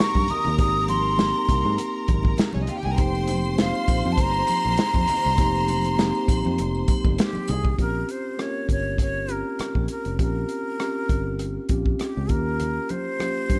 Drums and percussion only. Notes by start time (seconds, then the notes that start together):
0.00 snare
0.15 kick, high conga
0.28 closed hi-hat, low conga
0.45 low conga
0.58 kick, closed hi-hat, muted conga
0.88 closed hi-hat, high conga
1.18 snare, closed hi-hat, high conga
1.48 kick, closed hi-hat, muted conga
1.64 high conga
1.78 closed hi-hat, muted conga
2.08 kick, closed hi-hat, muted conga, high conga
2.23 kick, high conga
2.37 snare, closed hi-hat, muted conga
2.53 high conga
2.67 closed hi-hat, muted conga, low conga
2.83 low conga
2.98 kick, closed hi-hat, muted triangle
3.15 muted triangle
3.27 closed hi-hat, muted conga, high conga, triangle
3.45 muted triangle
3.58 snare, closed hi-hat, high conga, muted triangle
3.75 muted triangle
3.88 kick, closed hi-hat, muted conga, triangle
4.05 high conga, muted triangle
4.18 kick, closed hi-hat, muted conga, muted triangle
4.34 muted triangle
4.47 closed hi-hat, muted conga, high conga, triangle
4.65 high conga, muted triangle
4.77 snare, closed hi-hat, muted conga, muted triangle
4.93 kick, high conga, muted triangle
5.07 closed hi-hat, muted conga, low conga, triangle
5.25 low conga, muted triangle
5.38 kick, closed hi-hat, muted conga, muted triangle
5.55 muted triangle
5.68 closed hi-hat, high conga, triangle
5.84 closed hi-hat, muted triangle
5.98 snare, closed hi-hat, muted conga, high conga, muted triangle
6.15 muted triangle
6.28 kick, closed hi-hat, muted conga, triangle
6.45 high conga, muted triangle
6.58 closed hi-hat, muted triangle
6.75 muted triangle
6.88 kick, closed hi-hat, high conga, triangle
7.05 kick, high conga, muted triangle
7.18 snare, closed hi-hat, muted triangle
7.33 high conga, muted triangle
7.48 closed hi-hat, muted conga, low conga, triangle
7.64 kick, low conga
7.79 kick, closed hi-hat
8.09 closed hi-hat
8.39 cross-stick, closed hi-hat
8.69 kick, closed hi-hat
8.98 kick, closed hi-hat
9.28 closed hi-hat
9.59 cross-stick, closed hi-hat
9.75 kick
9.88 closed hi-hat
10.05 closed hi-hat
10.19 kick, closed hi-hat
10.49 closed hi-hat
10.80 cross-stick, closed hi-hat
11.09 kick, closed hi-hat
11.39 closed hi-hat
11.69 kick, closed hi-hat
11.86 kick
11.99 cross-stick, closed hi-hat
12.29 kick, closed hi-hat
12.60 closed hi-hat, muted conga, low conga
12.89 closed hi-hat, muted conga, high conga
13.20 cross-stick, closed hi-hat, high conga
13.50 kick, closed hi-hat, muted conga